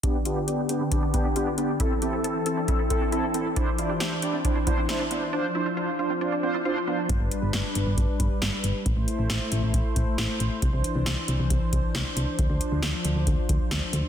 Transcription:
0.03 D3 B3 D4 G4, kick, closed hi-hat
0.25 B3 D4 F4 G4, closed hi-hat
0.36 G4
0.47 B3 D4 G4, closed hi-hat
0.69 B3 D4 G4, closed hi-hat
0.81 C4
0.92 B3 D4 G4, kick, closed hi-hat
1.03 D4
1.14 B3 D4 G4, kick, closed hi-hat
1.25 D4
1.36 B3 D4 F4 G4, closed hi-hat
1.47 D4
1.58 B3 D4 G4, closed hi-hat
1.80 E3 C4 E4 A4, kick, closed hi-hat
2.02 C4 E4 G4 A4, closed hi-hat
2.13 A4
2.24 C4 E4 A4, closed hi-hat
2.46 C4 E4 A4, closed hi-hat
2.57 D4
2.68 C4 E4 A4, kick, closed hi-hat
2.79 E4
2.90 C4 E4 A4, kick, closed hi-hat
3.01 D4
3.12 C4 E4 A4, closed hi-hat
3.23 D4
3.34 C4 E4 A4, closed hi-hat
3.56 D4 E4 C5, kick, closed hi-hat
3.78 D4 E4 F4 D5, closed hi-hat
3.90 G4
4.00 D4 E4 G4 C5, snare, closed hi-hat
4.22 D4 E4 G4 D5, closed hi-hat
4.34 C4
4.45 D4 E4 C5, kick, closed hi-hat
4.56 D4
4.67 B3 D4 E4 C5, kick, closed hi-hat
4.78 C4
4.89 D4 E4 C5, snare, closed hi-hat
5.00 D4
5.11 B3 D4 E4 C5, closed hi-hat
5.33 F3 D4 F4 C5
5.55 D4 E4 F4 C5
5.66 F4
5.77 D4 F4 C5
5.99 D4 F4 C5
6.10 C4
6.21 D4 F4 C5
6.32 D4
6.43 C4 D4 F4 C5
6.54 E4
6.65 D4 F4 C5
6.76 D4
6.87 B3 D4 F4 C5
7.09 G1 G3 D4 B4, kick, closed hi-hat
7.20 G1
7.31 closed hi-hat
7.43 G1
7.53 G1, snare, closed hi-hat
7.75 G1, closed hi-hat
7.87 G1
7.98 G1, kick, closed hi-hat
8.20 G1, kick, closed hi-hat
8.42 G1, snare, closed hi-hat
8.64 G1, closed hi-hat
8.86 A1 A3 E4 C5, kick, closed hi-hat
8.97 A1
9.08 closed hi-hat
9.19 A1
9.30 A1, snare, closed hi-hat
9.52 A1, closed hi-hat
9.63 A1
9.74 A1, kick, closed hi-hat
9.96 A1, kick, closed hi-hat
10.18 A1, snare, closed hi-hat
10.40 A1, closed hi-hat
10.62 C2 E3 D4, kick, closed hi-hat
10.73 C2
10.84 closed hi-hat
10.95 C2
11.06 C2, snare, closed hi-hat
11.28 C2, closed hi-hat
11.39 C2
11.50 C2, kick, closed hi-hat
11.73 C2, kick, closed hi-hat
11.95 C2, snare, closed hi-hat
12.17 C2, closed hi-hat
12.39 D2 F3, kick, closed hi-hat
12.50 D2
12.61 closed hi-hat
12.72 D2
12.83 D2, snare, closed hi-hat
13.05 D2, closed hi-hat
13.16 D2
13.27 D2, kick, closed hi-hat
13.49 D2, kick, closed hi-hat
13.71 D2, snare, closed hi-hat
13.93 D2, closed hi-hat

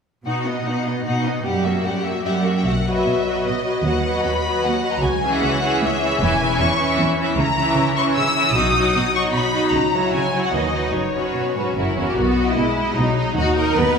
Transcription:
0.26 B2 D#4 F#4 F#5
0.45 B3 D#4 D#5
0.65 B2 D#4 F#4 F#5
0.85 B3 D#4 D#5
1.04 B2 D#4 F#4 F#5
1.23 B3 D#4 D#5
1.44 F#2 G3 G4 F#5
1.63 A#3 F#4 E5
1.84 F#2 G3 G4 F#5
2.04 A#3 F#4 E5
2.23 F#2 G3 G4 E5 F#5
2.45 A#3 F#4 E5
2.57 G5
2.64 B1 B2 F#5
2.85 F#3 F#4 B4 D#5
2.96 E5
3.06 B2
3.25 F#3 F#4 B4 D#5
3.45 B2 D#5
3.64 F#3 F#4 B4 D#5
3.83 D#2 F#3 F#4 B4 D#5 F#5
4.04 F#3 F#4 B4 D#5
4.25 D#2 B5
4.43 F#3 F#4 B4 D#5
4.64 D#2 F#5
4.84 F#3 F#4 B4 D#5
4.95 A#5
5.03 C#2 G#5
5.24 E3 C#4 G#4 E5
5.32 F#5
5.44 C#2
5.63 E3 C#4 G#4 E5
5.82 C#2 E5
6.02 E3 C#4 G#4 E5
6.20 E1 E2 E3 C#4 E4 E5 G#5
6.41 E3 C#4 E4 E5
6.60 E2 C#6
6.80 E3 C#4 E4 E5
7.00 E2
7.19 E3 C#4 E4 E5
7.37 C#2 C#3 A#5
7.58 E3 C#4 E4 E5
7.77 C#3
7.97 E3 C#4 E4 E5 C#6
8.16 C#3 E6
8.36 E3 C#4 E4 E5
8.54 B1 B2 F#3 D#4 F#4 D#5 D#6
8.75 F#3 D#4 F#4 D#5
8.95 B2
9.14 F#3 D#4 F#4 D#5 C#6
9.33 B2 B5
9.54 F#3 D#4 F#4 D#5
9.73 C#2 C#3 A#5
9.93 F#3 E4 F#4 C#5
10.13 C#3 G#5
10.33 F#3 E4 F#4 C#5
10.44 F#5
10.53 D#2 D#3 F#3 D#4 F#4 B4 D#5
10.73 F#3 D#4 F#4 B4
10.93 F#1 F#2 C#5
11.15 F#3 C#4 F#4 B4
11.35 B2
11.55 G#2 F#3 C#4 F#4 B4
11.75 F#1 F#2 F#3 C#4 E4 F#4 A#4
11.96 E2 F#3 C#4 F#4 A#4
12.09 G4
12.17 B1 B2 B3 F#4
12.38 D#5
12.47 E4
12.56 B1 B2 G#3
12.78 D#5
12.95 B1 B2 F#3 D#4
13.18 D#5
13.36 D#2 D#4 F#4 D#5
13.57 A#4 D#5
13.76 D#2 B3 B4

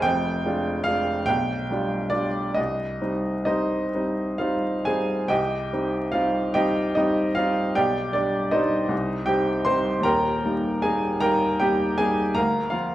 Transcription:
0.02 F1 F2 G5
0.45 G#3 D4 F4
0.84 G#3 D4 F4 F5
1.26 B1 G5
1.71 G3 D4 F4
2.10 G3 D4 F4 D5
2.54 C2 D#5
3.01 G3 C4 D#4
3.45 G3 C4 D#4 C5 D#5
3.95 G3 C4 D#4
4.38 G3 C4 D#4 F4 F5
4.85 G3 C4 D#4 G#4 G#5
5.28 C2 G4 D#5 G5
5.73 G3 C4 D#4
6.12 G3 C4 D#4 F4 F5
6.54 G3 C4 D#4 G4 D#5 G5
6.95 G3 C4 D#4 D#5
7.35 G3 C4 D#4 F4 F5
7.75 B1 G4 D5 G5
8.13 G3 D4 D5
8.51 G3 D4 D#4 C5 D#5
8.88 C2
9.26 G3 C4 D#4 G4 G5
9.65 G3 C4 D#4 C5 C6
10.00 D#2 A#5
10.04 D#1 A#4 G5
10.45 G3 A#3 D#4
10.82 G3 A#3 D#4 G#4 G#5
11.20 G3 A#3 D#4 A#4 G5 A#5
11.60 G3 A#3 D#4 G4 G5
11.98 G3 A#3 D#4 G#4 G#5
12.35 D2 A#4 F5 A#5
12.70 F3 A#3 F4 F5

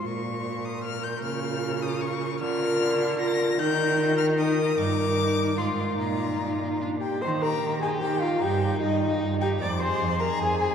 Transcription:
Already playing: F4
0.05 A#2 A#4 C#6
0.65 D#6
0.84 F6
1.03 G6
1.23 C#3 F4 F6
1.82 D#6
2.01 C#6
2.40 D3 F4 A#4 F6
3.19 F4 A#4 A#6
3.59 D#3 D#4 A#4 G6
4.18 F6
4.37 D#4 A#4 D#6
4.77 G2 D#4 A#4 D6
5.57 G#2 D#4 F4 C6
5.98 A#2 D#4 F4 A#5
6.81 D4 F4
7.01 G4 G5
7.21 D#3 C5 C6
7.42 G4 A#4 A#5
7.62 D#3
7.82 G4 G#4 G#5
8.02 D#3 G4 G5
8.21 F4 G4 F5
8.42 G2 D#4 G4 G5
8.63 D#4
8.82 G2 D#4 D#5
9.02 D#4
9.21 G2
9.41 D#4 G4 G5
9.60 F2 D5 D6
9.80 G#4 C5 C6
10.01 F2
10.20 G#4 A#4 A#5
10.40 F2 G#4 G#5
10.60 G#4

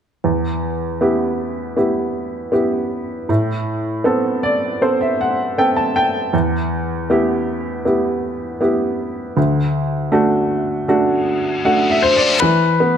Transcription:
0.24 E2
1.01 B3 E4 G4
1.77 B3 E4 G4
2.52 B3 E4 G4
3.29 A2
4.04 B3 C4 A4
4.43 D5
4.82 B3 C4 A4 C5
5.01 E5
5.21 F#5
5.58 B3 C4 A4 G5
5.76 A5
5.96 G5
6.33 E2
7.10 B3 E4 G4
7.85 B3 E4 G4
8.61 B3 E4 G4
9.37 D2
10.12 A3 D4 F#4
10.88 A3 D4 F#4, reverse cymbal
11.65 A3 D4 F#4 F#5
11.90 E5
12.02 C5
12.16 D5
12.40 E3 B4
12.80 B3

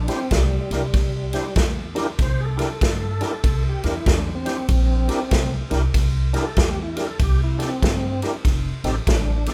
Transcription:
0.08 D4 E4 G4 C5, snare, ride
0.14 C4
0.31 C2, kick, snare, ride
0.36 G3
0.71 C2 D4 E4 G4 A#4, snare, ride
0.94 C2, kick, snare, ride
1.33 D4 E4 G4 C5, snare, ride
1.56 E2, kick, snare, ride
1.95 D4 E4 G4 A#4, snare, ride
2.19 C2 C5, kick, snare, ride
2.41 G#4 A4
2.57 D4 E4 G4 A#4, snare, ride
2.81 G2, kick, snare, ride
3.21 D4 E4 G4 A#4, snare, ride
3.44 C2, kick, ride
3.69 G4
3.83 E2 D4 E4 G4 A#4, snare, ride
3.92 E4
4.06 E2, kick, snare, ride
4.12 D4
4.35 C4
4.45 D4 E4 G4 C5, snare, ride
4.68 A#1, kick, ride
5.08 D4 E4 G4 A#4, snare, ride
5.31 C2, kick, snare, ride
5.70 C2 D4 E4 G4 A#4, snare, ride
5.94 C2, kick, snare, ride
6.33 D4 E4 G4 G#4 A#4, snare, ride
6.40 A4
6.56 E2, kick, snare, ride
6.61 G4
6.82 E4
6.96 D4 E4 G4 G#4 A#4, snare, ride
7.03 A4
7.19 C2 G4, kick, ride
7.44 E4
7.58 D4 E4 G4 A4, snare, ride
7.65 C4
7.83 G2, kick, snare, ride
8.22 D4 E4 G4 A#4, snare, ride
8.45 F1, kick, snare, ride
8.84 A1 C4 D#4 G4 A4, snare, ride
9.06 A1 C#4, kick, snare, ride
9.11 D4
9.46 C4 D#4 G4 A4, snare, ride

